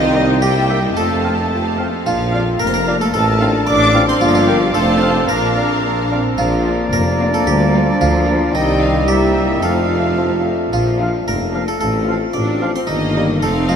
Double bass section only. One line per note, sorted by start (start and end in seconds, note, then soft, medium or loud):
0.00 0.97 C2 medium
0.97 1.84 F2 medium
2.06 2.52 A#1 medium
2.61 3.06 F1 medium
3.15 3.60 A1 medium
3.68 4.13 A1 medium
4.21 4.71 G1 medium
4.75 5.30 F1 medium
5.29 6.18 A#1 medium
6.39 6.82 A#1 medium
6.93 7.36 F1 medium
7.48 7.90 D2 medium
8.01 8.44 D2 medium
8.55 9.59 C2 medium
9.63 10.51 F2 medium
10.73 11.16 A#1 medium
11.27 11.70 F1 medium
11.82 12.24 A1 medium
12.35 12.77 A1 medium
12.89 13.39 G1 medium
13.42 13.76 F1 medium